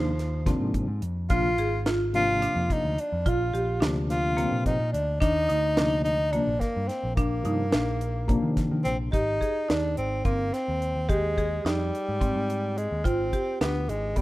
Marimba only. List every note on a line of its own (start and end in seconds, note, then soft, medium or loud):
0.00 0.38 D#4 medium
0.46 0.93 C4 medium
1.30 1.53 F4 medium
1.59 1.82 G#4 medium
1.86 2.33 F4 medium
2.42 2.88 D4 medium
3.26 3.49 F4 medium
3.54 3.77 G4 medium
3.80 4.27 D4 medium
4.37 4.84 A#3 medium
5.20 5.44 D4 medium
5.49 5.72 D#4 medium
5.77 6.23 D4 medium
6.33 6.79 A#3 medium
7.17 7.40 D4 medium
7.45 7.68 D#4 medium
7.73 8.19 D4 medium
8.28 8.75 A#3 medium
9.12 9.36 G4 medium
9.41 9.64 G#4 medium
9.68 10.15 D#4 medium
10.25 10.72 C4 medium
11.09 11.32 G4 medium
11.38 11.61 G#4 medium
11.65 12.11 D#4 medium
12.21 12.67 C4 medium
13.04 13.28 F4 medium
13.33 13.56 G4 medium
13.61 14.08 D4 medium
14.16 14.22 B3 medium